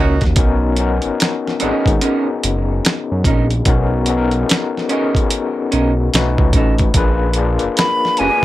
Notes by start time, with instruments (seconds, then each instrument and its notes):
Already playing: analog synth bass C#2, tine electric piano A#3 C#4 D#4 F#4 A#4, clean electric guitar C#4 F#4 A#4, horn section C#4 D#4 F#4
0.21 analog synth bass D#2, kick, snare, closed hi-hat
0.36 analog synth bass B1, tine electric piano B3 C#4 D#4 F#4, kick, closed hi-hat
0.40 tine electric piano A#4
0.76 tine electric piano B3 C#4 D#4, closed hi-hat
0.81 tine electric piano F#4 A#4
1.02 analog synth bass G#1, closed hi-hat
1.20 muted clean electric guitar stroke, snare, closed hi-hat
1.48 snare
1.60 analog synth bass G#1, tine electric piano B3 C#4 D#4 F#4 G#4, clean electric guitar C4 D#4 A#4, closed hi-hat
1.71 clean electric guitar C#4
1.86 analog synth bass G#1, kick, closed hi-hat
2.01 clean electric guitar C#4 D#4 A#4, closed hi-hat
2.43 analog synth bass F#1, closed hi-hat
2.85 snare, closed hi-hat
3.12 analog synth bass F#2
3.24 analog synth bass A#1, clean electric guitar C#4 D#4 A#4, kick, closed hi-hat
3.50 closed hi-hat
3.65 analog synth bass B1, tine electric piano B3 C#4 D#4 F#4 A#4, kick, closed hi-hat
4.06 tine electric piano B3 C#4 D#4, closed hi-hat
4.10 tine electric piano F#4 A4
4.17 tine electric piano A#4
4.31 closed hi-hat
4.49 muted clean electric guitar stroke, snare, closed hi-hat
4.77 snare
4.89 tine electric piano B3 C#4 D#4 F#4, clean electric guitar C#4 D#4 A#4, closed hi-hat
4.93 tine electric piano G#4
5.00 tine electric piano A#4
5.15 kick, closed hi-hat
5.30 closed hi-hat
5.72 analog synth bass B1, clean electric guitar C#4 D#4 A#4, closed hi-hat
6.14 analog synth bass B1, tine electric piano A3 C#4 D#4 F#4 B4, snare, closed hi-hat
6.38 analog synth bass C#2, kick
6.53 analog synth bass A1, clean electric guitar C#4 D#4 A4, kick, closed hi-hat
6.78 kick, closed hi-hat
6.94 analog synth bass A#1, tine electric piano A#3 D4 F4 G#4 B4, kick, closed hi-hat
7.33 tine electric piano A#3 D4 F4, closed hi-hat
7.38 tine electric piano G#4 A#4
7.59 closed hi-hat
7.64 analog synth bass F#1
7.77 flute B5, muted clean electric guitar stroke, snare, closed hi-hat
8.05 snare
8.17 analog synth bass F#1, tine electric piano A#3 D4 F4 G#4 B4, clean electric guitar D4, flute G#5, closed hi-hat
8.21 clean electric guitar G#4 B4